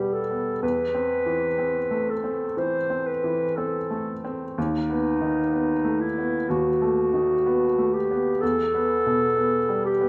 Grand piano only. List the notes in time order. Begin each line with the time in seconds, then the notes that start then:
Already playing: B2 B3
0.00 G3
0.30 B3
0.62 E2
0.94 C4
1.26 E3
1.58 C4
1.91 A3
2.24 C4
2.57 E3
2.90 C4
3.24 E3
3.58 C4
3.91 A3
4.25 C4
4.58 D#2
4.90 B3
5.21 D#3
5.53 B3
5.85 A3
6.18 B3
6.50 D#2
6.82 A3
7.13 D#3
7.46 B3
7.78 A3
8.11 B3
8.43 E2
8.75 B3
9.06 B2
9.37 B3
9.69 G3
10.01 B3